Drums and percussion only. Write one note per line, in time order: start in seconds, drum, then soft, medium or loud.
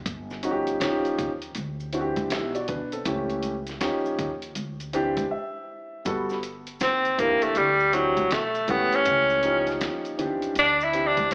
0.06 kick loud
0.06 closed hi-hat medium
0.06 maracas medium
0.30 snare soft
0.30 maracas soft
0.43 closed hi-hat medium
0.43 maracas soft
0.67 closed hi-hat soft
0.67 maracas soft
0.81 snare loud
0.81 closed hi-hat medium
0.81 maracas medium
1.05 closed hi-hat soft
1.05 maracas soft
1.19 kick medium
1.19 closed hi-hat medium
1.19 low conga medium
1.19 maracas soft
1.42 closed hi-hat medium
1.42 maracas soft
1.55 closed hi-hat medium
1.55 high conga medium
1.55 maracas medium
1.80 maracas soft
1.93 closed hi-hat medium
1.93 maracas soft
2.16 kick medium
2.16 closed hi-hat medium
2.16 high conga medium
2.16 maracas soft
2.30 snare loud
2.30 closed hi-hat loud
2.30 maracas medium
2.55 closed hi-hat soft
2.55 maracas soft
2.68 kick medium
2.68 closed hi-hat medium
2.68 low conga medium
2.68 maracas medium
2.92 closed hi-hat soft
2.92 maracas soft
3.05 kick loud
3.05 closed hi-hat loud
3.05 maracas medium
3.30 closed hi-hat soft
3.30 maracas soft
3.43 closed hi-hat medium
3.43 high conga soft
3.43 maracas soft
3.67 snare soft
3.67 closed hi-hat soft
3.67 maracas soft
3.81 snare loud
3.81 closed hi-hat medium
3.81 maracas medium
4.06 maracas soft
4.19 kick loud
4.19 closed hi-hat medium
4.19 low conga medium
4.19 maracas soft
4.42 closed hi-hat medium
4.42 maracas soft
4.55 closed hi-hat medium
4.55 high conga medium
4.55 maracas medium
4.80 closed hi-hat soft
4.80 maracas soft
4.93 closed hi-hat medium
4.93 maracas soft
5.17 kick medium
5.17 closed hi-hat medium
5.17 high conga medium
5.17 maracas soft
6.05 kick loud
6.05 closed hi-hat medium
6.05 maracas medium
6.29 snare soft
6.29 maracas soft
6.43 closed hi-hat medium
6.43 maracas soft
6.67 closed hi-hat soft
6.67 maracas soft
6.80 snare medium
6.80 closed hi-hat medium
6.80 maracas medium
7.05 closed hi-hat soft
7.05 maracas soft
7.19 kick medium
7.19 closed hi-hat medium
7.19 low conga medium
7.19 maracas soft
7.41 closed hi-hat medium
7.41 maracas soft
7.55 closed hi-hat medium
7.55 maracas medium
7.80 maracas soft
7.93 closed hi-hat medium
7.93 maracas soft
8.17 kick medium
8.17 closed hi-hat soft
8.17 high conga medium
8.17 maracas soft
8.31 snare loud
8.31 closed hi-hat medium
8.31 maracas medium
8.55 closed hi-hat soft
8.55 maracas soft
8.68 kick medium
8.68 closed hi-hat medium
8.68 high conga medium
8.68 low conga medium
8.68 maracas soft
8.92 closed hi-hat medium
8.92 maracas soft
9.05 kick loud
9.05 closed hi-hat loud
9.05 maracas medium
9.30 maracas soft
9.43 closed hi-hat medium
9.43 maracas soft
9.67 snare soft
9.67 closed hi-hat soft
9.67 maracas soft
9.81 snare loud
9.81 closed hi-hat medium
9.81 maracas medium
10.05 closed hi-hat soft
10.05 maracas soft
10.19 closed hi-hat medium
10.19 low conga medium
10.19 maracas soft
10.42 closed hi-hat medium
10.42 maracas soft
10.55 closed hi-hat medium
10.55 maracas medium
10.81 maracas soft
10.93 closed hi-hat medium
10.93 maracas soft
11.17 kick medium
11.17 closed hi-hat medium
11.17 high conga medium
11.17 maracas soft
11.31 closed hi-hat medium